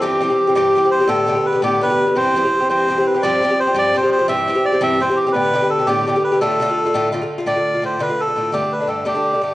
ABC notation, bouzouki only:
X:1
M:6/8
L:1/16
Q:3/8=113
K:Ddor
V:1 name="Bouzouki"
[G,,E,CG]2 [G,,E,CG] [E,CG]2 [E,CG] [G,,E,CG]2 [G,,E,CG] [E,CG]2 [E,CG] | [A,,D,B,G]2 [A,,D,B,G] [D,B,G]2 [D,B,G] [A,,D,B,G]2 [A,,D,B,G] [D,B,G]2 [D,B,G] | [G,,E,CG]2 [G,,E,CG] [E,CG]2 [E,CG] [G,,E,CG]2 [G,,E,CG] [E,CG]2 [E,CG] | [G,,F,CG]2 [G,,F,CG] [F,CG]2 [F,CG] [G,,F,CG]2 [G,,F,CG] [F,CG]2 [F,CG] |
[G,,E,CG]2 [G,,E,CG] [E,CG]2 [E,CG] [G,,E,CG]2 [G,,E,CG] [E,CG]2 [E,CG] | [A,,D,B,G]2 [A,,D,B,G] [D,B,G]2 [D,B,G] [A,,D,B,G]2 [A,,D,B,G] [D,B,G]2 [D,B,G] | [A,,D,A,F]2 [A,,D,A,F] [D,A,F]2 [D,A,F] [A,,D,A,F]2 [A,,D,A,F] [D,A,F]2 [D,A,F] | [A,,D,A,F] [D,A,F]2 [D,A,F] [A,,D,A,F]2 [A,,D,A,F] [D,A,F]2 [D,A,F] [A,,D,A,F]2 |
[G,,D,A,D] [D,A,D]2 [D,A,D] [G,,D,A,D]2 [G,,D,A,D] [D,A,D]2 [D,A,D] [G,,D,A,D]2 |]